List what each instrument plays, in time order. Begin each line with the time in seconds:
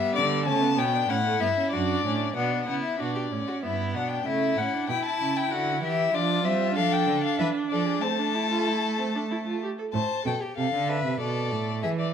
Already playing: viola G3, violin B3 E5
0.15 cello D3, violin D5
0.46 cello C#3, viola A3, violin C#4 A5
0.61 violin B3
0.78 cello B2, viola B3, violin C#4 G5
0.93 violin D4
1.08 cello A2, viola C#4, violin E4 F#5
1.24 viola A3
1.41 cello G2, viola B3, violin E5
1.57 viola C#4
1.71 cello F#2, viola D4, violin F#4 D5
2.05 cello A2, violin C#4
2.36 cello B2, viola B3, violin D4 F#5
2.68 cello C#3, viola B3, violin E4 F#5
2.83 violin E5
3.00 cello B2, viola D4, violin F#4 D5
3.15 violin G4
3.32 cello A2, viola C#4
3.48 violin F#4
3.63 cello G2, viola B3, violin E4 E5
3.94 cello B2, violin D4 F#5
4.10 violin G5
4.26 cello C#3, viola A3, violin E4 E5
4.57 cello A2, viola C#4, violin F#5
4.74 viola D4
4.89 cello B2, viola E4, violin E4 G5
5.05 violin A5
5.20 cello C#3
5.37 violin G5
5.51 cello D3, violin F#4 F#5
5.83 cello E3, violin G4 E5
6.14 cello F3, viola D4, violin F4 D5
6.44 cello G3, viola C4, violin E5
6.75 cello F3, viola D4, violin A4 F5
6.93 violin G5
7.07 cello D3
7.24 violin F5
7.39 cello E3, violin B4 E5
7.70 cello F3, violin A4 D5
7.87 violin G#4
8.01 cello A3, viola C4, violin A4 A5
8.19 viola D4
8.35 viola E4
8.50 viola F4
8.67 viola E4
8.99 viola C4
9.15 viola D4
9.31 viola E4
9.46 viola F4
9.63 viola G4
9.78 viola A4
9.93 cello A2, violin C5 A5
10.26 cello B2, violin A4 G5
10.41 violin G4
10.57 cello C3, violin A4 F5
10.74 cello D3
10.89 violin B4 E5
11.05 cello C3
11.20 cello B2, violin A4 D5
11.53 cello A2
11.83 cello E3, violin G#4 E5
12.00 violin D5